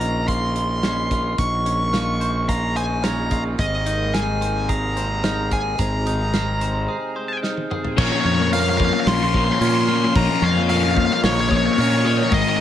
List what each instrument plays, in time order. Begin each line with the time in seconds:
Already playing: fingered electric bass A#1, clean electric guitar A#2 C#4 F4, harmonium C#3 A#3 D#4, lead electric guitar A#5, glockenspiel F6
0.01 closed hi-hat
0.28 clean electric guitar F4, lead electric guitar C6, glockenspiel C6, kick, closed hi-hat
0.56 closed hi-hat
0.83 clean electric guitar C#4, glockenspiel F6, snare, closed hi-hat
1.11 clean electric guitar F4, glockenspiel F6, kick, closed hi-hat
1.38 fingered electric bass A#1, clean electric guitar A#2, lead electric guitar C#6, kick, closed hi-hat
1.66 clean electric guitar C#4, glockenspiel C#6, closed hi-hat
1.93 clean electric guitar F4, glockenspiel F6, snare, closed hi-hat
2.21 clean electric guitar C5, closed hi-hat
2.48 clean electric guitar F4, lead electric guitar A#5, glockenspiel C#6, kick, closed hi-hat
2.76 clean electric guitar C5, lead electric guitar G#5, glockenspiel D#6, closed hi-hat
3.03 clean electric guitar C#4, lead electric guitar A#5, glockenspiel F6, snare, closed hi-hat
3.31 clean electric guitar F4, glockenspiel D#6, kick, closed hi-hat
3.59 fingered electric bass G#1, harmonium C3 G#3, clean electric guitar G#3, lead electric guitar D#5, glockenspiel D#6, kick, closed hi-hat
3.86 clean electric guitar D#4, closed hi-hat
4.14 clean electric guitar G#4, lead electric guitar G#5, glockenspiel F6, snare, closed hi-hat
4.41 clean electric guitar C5, closed hi-hat
4.69 clean electric guitar G#4, lead electric guitar A#5, glockenspiel D#6, kick, closed hi-hat
4.97 clean electric guitar C5, closed hi-hat
5.24 clean electric guitar D#4, glockenspiel F6, snare, closed hi-hat
5.51 clean electric guitar G#4, lead electric guitar G#5, glockenspiel F6, kick, closed hi-hat
5.79 fingered electric bass G#1, clean electric guitar G#3, harmonium C4, lead electric guitar A#5, kick, closed hi-hat
6.07 clean electric guitar D#4, glockenspiel D#6, closed hi-hat
6.34 clean electric guitar G#4, glockenspiel F6, snare, closed hi-hat
6.61 clean electric guitar C5, closed hi-hat
6.88 clean electric guitar G#4, glockenspiel D#6
7.16 clean electric guitar C5, glockenspiel D#6
7.43 clean electric guitar D#4, glockenspiel F6, snare
7.57 high tom
7.71 clean electric guitar G#4, glockenspiel D#6, mid tom
7.85 floor tom
7.97 fingered electric bass A#1, overdriven electric guitar A#2 F3 A#3 C#4, clean electric guitar A#2, harmonium C#4 A#4 F5 A#5, lead electric guitar C#5, glockenspiel C#6, kick, crash
8.04 lead electric guitar C#5
8.10 overdriven electric guitar F3 A#3 C#4, lead electric guitar C#5
8.21 lead electric guitar C#5
8.25 fingered electric bass F2, clean electric guitar C#4, lead electric guitar C#5
8.35 overdriven electric guitar C#4, lead electric guitar C#5
8.40 overdriven electric guitar F3 A#3, lead electric guitar C#5
8.51 overdriven electric guitar A#2 F3 A#3 C#4, clean electric guitar F4, lead electric guitar F5, glockenspiel F6, open hi-hat
8.60 lead electric guitar F5
8.69 lead electric guitar F5
8.77 overdriven electric guitar A#2 F3, lead electric guitar F5, kick
8.81 overdriven electric guitar A#3 C#4, lead electric guitar F5
8.92 overdriven electric guitar F3 A#3 C#4, lead electric guitar F5
9.00 lead electric guitar F5
9.07 fingered electric bass A#1, clean electric guitar F4, glockenspiel C6, lead electric guitar C6, snare, open hi-hat
9.15 lead electric guitar C6
9.20 overdriven electric guitar F3 A#3 C#4, lead electric guitar C6
9.29 lead electric guitar C6
9.34 overdriven electric guitar A#2 F3 A#3 C#4, clean electric guitar A#3, lead electric guitar C6, kick
9.44 overdriven electric guitar C#4, lead electric guitar C6
9.49 overdriven electric guitar F3 A#3, lead electric guitar C6
9.60 overdriven electric guitar A#2 F3 A#3, fingered electric bass A#2, clean electric guitar C#4, lead electric guitar C6, glockenspiel F6, open hi-hat
9.64 overdriven electric guitar C#4, lead electric guitar C6
9.75 lead electric guitar C6
9.81 lead electric guitar C6
9.88 overdriven electric guitar A#2 F3 A#3 C#4, clean electric guitar A#3, lead electric guitar C6, glockenspiel F6
9.96 lead electric guitar C6
10.01 overdriven electric guitar F3 A#3 C#4, lead electric guitar C6
10.14 fingered electric bass A#1, overdriven electric guitar A#2 F3 A#3 C#4, clean electric guitar A#2, harmonium D#5, lead electric guitar A#5, kick, open hi-hat
10.28 overdriven electric guitar F3 A#3 C#4
10.42 fingered electric bass F2, clean electric guitar C#4, lead electric guitar F5, glockenspiel C#6
10.56 overdriven electric guitar F3 A#3 C#4
10.69 overdriven electric guitar A#2 F3 A#3 C#4, clean electric guitar F4, lead electric guitar F5, glockenspiel F6, open hi-hat
10.77 lead electric guitar F5
10.83 lead electric guitar F5
10.91 lead electric guitar F5
10.96 overdriven electric guitar A#2 F3 A#3 C#4, lead electric guitar F5, kick
11.05 lead electric guitar F5
11.10 overdriven electric guitar F3 A#3 C#4, lead electric guitar F5, snare
11.23 fingered electric bass A#1, clean electric guitar F4, lead electric guitar C#5, glockenspiel C#6, snare, open hi-hat
11.32 overdriven electric guitar C#4, lead electric guitar C#5
11.39 overdriven electric guitar F3 A#3, lead electric guitar C#5
11.49 overdriven electric guitar A#2 F3, clean electric guitar A#3, lead electric guitar C#5, glockenspiel D#6, kick
11.53 overdriven electric guitar A#3 C#4, lead electric guitar C#5
11.64 overdriven electric guitar F3 A#3 C#4, lead electric guitar C#5
11.73 lead electric guitar C#5
11.77 overdriven electric guitar A#2 F3 A#3 C#4, fingered electric bass A#2, clean electric guitar C#4, lead electric guitar C#5, glockenspiel F6, open hi-hat
11.91 lead electric guitar C#5
11.98 lead electric guitar C#5
12.04 overdriven electric guitar A#2 F3 A#3 C#4, clean electric guitar A#3, lead electric guitar C#5, glockenspiel D#6
12.17 overdriven electric guitar F3 A#3 C#4
12.30 fingered electric bass G#1, overdriven electric guitar G#2 D#3 G#3 C4 D#4, clean electric guitar G#3, harmonium D#4 G#5, lead electric guitar D#5, glockenspiel D#6, kick, open hi-hat
12.41 overdriven electric guitar D#4, lead electric guitar D#5
12.46 overdriven electric guitar G#3 C4, lead electric guitar D#5
12.57 lead electric guitar D#5